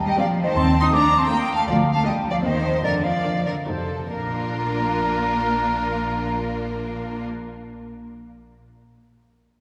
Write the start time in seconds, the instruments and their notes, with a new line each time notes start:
0.06 cello section G3, violin section D#5, flute G5
0.18 cello section F3, viola section G3 C4, violin section G4 D5, flute F5
0.43 cello section D#3, violin section C5, flute D#5
0.55 double bass section D#2, cello section C4, violin section A5, flute C6
0.79 cello section D#4, violin section C6, flute D#6
0.92 viola section A3 C4, cello section D4, violin section F4 A#5, flute D6
1.18 cello section C4, violin section A5, flute C6
1.29 viola section A3 C4, cello section A#3, violin section F4 G5, flute A#5
1.55 cello section A3, violin section F5, flute A5
1.67 double bass section D2, cello section F3, violin section D5, flute F5
1.92 cello section A3, violin section F5, flute A5
2.05 cello section G3, viola section A#3 D4, violin section F4 D#5, flute G5
2.31 cello section F3, violin section D5, flute F5
2.44 double bass section D#2, cello section D#3, viola section A#3 C4, violin section G4 C5, flute D#5
2.83 double bass section F2, cello section D3, violin section A#4, flute D5
3.03 cello section F3, violin section D5, flute F5
3.26 viola section A#3 D4, violin section F4
3.45 cello section D3, violin section A#4, flute D5
3.67 double bass section F2, cello section C3, viola section A3 D#4, violin section F#4 A4, flute C5
4.10 double bass section A#1, viola section A#3 D4, cello section A#3, violin section F4 A#4, flute A#4